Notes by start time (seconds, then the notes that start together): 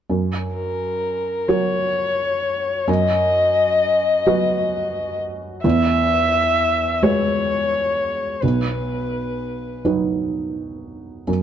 0.10 F#2
0.55 A#4
1.48 F#3 F#4 A#4 C#5
2.88 F#2 D#5
4.27 F#3 F#4 B4
5.64 E2 E5
7.02 G#3 F#4 B4 C#5
8.42 B1 B4
9.85 F#3 D#4 B4
11.27 F#2